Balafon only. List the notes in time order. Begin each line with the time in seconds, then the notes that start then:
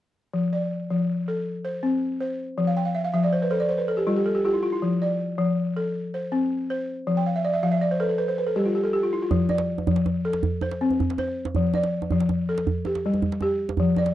0.34 F3
0.53 D5
0.90 F3
1.28 A4
1.65 C5
1.83 C4
2.21 C5
2.58 F3
2.67 F5
2.77 G5
2.85 F5
2.95 E5
3.04 F5
3.13 F3 E5
3.24 D5
3.33 C5
3.42 B4
3.51 A4 C5
3.60 D5
3.69 C5
3.78 B4
3.88 A4
3.97 G4
4.07 G3 F4
4.16 G4
4.26 A4
4.35 G4
4.45 F4 G4
4.53 E4
4.63 F4
4.72 E4
4.82 F3
5.02 D5
5.38 F3
5.77 A4
6.14 C5
6.32 C4
6.70 C5
7.07 F3
7.17 G5
7.26 F5
7.36 E5
7.45 D5
7.54 E5
7.63 F3 F5
7.72 E5
7.81 D5
7.91 C5
8.00 A4 B4
8.09 A4
8.18 B4
8.28 C5
8.38 B4
8.47 A4
8.56 G3 G4
8.65 F4
8.75 G4
8.84 A4
8.93 G4
9.03 F4
9.13 E4
9.22 F4
9.31 F3
9.49 D5
9.87 F3
10.25 A4
10.62 C5
10.81 C4
11.19 C5
11.56 F3
11.75 D5
12.12 F3
12.49 A4
12.86 G4
13.06 G3
13.42 G4
13.80 F3
13.98 D5